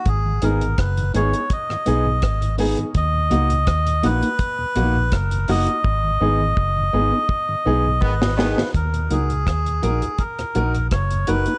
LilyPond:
<<
  \new Staff \with { instrumentName = "Melodica" } { \time 4/4 \key ees \minor \tempo 4 = 83 aes'8 bes'8 ces''8 des''8 ees''4. r8 | ees''4. ces''4. bes'8 ees''8~ | ees''2. ces''4 | bes'8 aes'4. bes'4 des''8 ces''8 | }
  \new Staff \with { instrumentName = "Upright piano" } { \time 4/4 \key ees \minor r8 <ces' ees' aes'>16 r8. <ces' ees' aes'>16 <ees' aes'>16 r8 <ces' ees' aes'>16 r8. <ces' ees' aes'>16 <ees' aes'>16 | r8 <bes ees' ges'>16 r8. <bes ees' ges'>16 <ees' ges'>16 r8 <bes ees' ges'>16 r8. <bes ees' ges'>16 <ees' ges'>16 | r8 <ces' ees' aes'>16 r8. <ces' ees' aes'>16 <ees' aes'>16 r8 <ces' ees' aes'>16 r8. <ces' ees' aes'>16 r16 | r8 <ees' ges' bes'>16 r8. <ees' ges' bes'>16 <ges' bes'>16 r8 <ees' ges' bes'>16 r8. <ees' ges' bes'>16 <ges' bes'>16 | }
  \new Staff \with { instrumentName = "Trombone section" } { \clef bass \time 4/4 \key ees \minor r1 | r1 | r2. <ees aes ces'>16 r16 <ees aes ces'>8 | r1 | }
  \new Staff \with { instrumentName = "Tonewheel organ" } { \clef bass \time 4/4 \key ees \minor r16 <aes, ees>16 <aes ces' ees'>16 <aes, ees>16 r16 <aes, ees>16 <aes ces' ees'>16 <ces' ees'>16 r16 <aes, ees>16 <aes ces' ees'>16 <aes, ees>16 r16 <aes, ees>16 <aes ces' ees'>16 <aes, ees>16 | r16 <ees, bes,>16 <ges bes ees'>16 <ees, bes,>16 r16 <ees, bes,>16 <ges bes ees'>16 <bes ees'>16 r16 <ees, bes,>16 <ges bes ees'>16 <ees, bes,>16 r16 <ees, bes,>16 <ges bes ees'>16 r16 | r16 <aes, ees>16 <aes ces' ees'>16 <aes, ees>16 r16 <aes, ees>16 <aes ces' ees'>16 <ces' ees'>16 r16 <aes, ees>16 <aes ces' ees'>16 <aes, ees>16 r16 <aes, ees>16 <aes ces' ees'>16 <aes, ees>16 | r16 <ees, bes,>16 <ges bes ees'>16 <ees, bes,>16 r16 <ees, bes,>16 <ges bes ees'>16 <ees, bes,>16 r16 <ees, bes,>16 <ges bes ees'>16 <ees, bes,>16 r16 <ees, bes,>16 <ges bes ees'>16 <bes ees'>16 | }
  \new Staff \with { instrumentName = "Fingered electric bass" } { \clef bass \time 4/4 \key ees \minor aes,,8 aes,,8 ges,,8 aes,,16 r8. ces,8 aes,,8. r16 | ees,8 des,8 ees,8 bes,,16 r8. bes,,8 ges,,8 ges,,16 r16 | aes,,8 aes,,8 ges,,8 aes,,16 r8. ces,8 aes,,8. r16 | ees,8 des,8 ees,8 bes,,16 r8. bes,,8 ges,,8 ges,,16 r16 | }
  \new DrumStaff \with { instrumentName = "Drums" } \drummode { \time 4/4 <hh bd>8 hh16 hh16 <hh bd ss>16 hh16 hh16 hh16 <hh bd>16 ss16 hh8 <hh bd ss>16 hh16 hho16 hh16 | <hh bd>8 hh16 hh16 <hh bd ss>16 hh16 hh16 hh16 <hh bd>8 hh8 <hh bd ss>16 hh16 hho16 hh16 | bd4 bd4 bd4 bd16 sn16 sn16 sn16 | <hh bd>16 hh16 hh16 hh16 <hh bd ss>16 hh16 hh16 hh16 <hh bd>16 <hh ss>16 hh16 hh16 <hh bd ss>16 hh16 hh16 hh16 | }
>>